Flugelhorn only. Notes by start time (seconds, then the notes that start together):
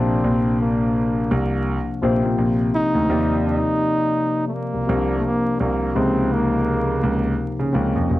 Already playing: C4
0.61 A#3
2.75 D#4
3.47 D#4
4.47 A3
4.54 A#3
5.19 A3
5.26 A#3
5.61 A#3
5.97 C4
6.33 A#3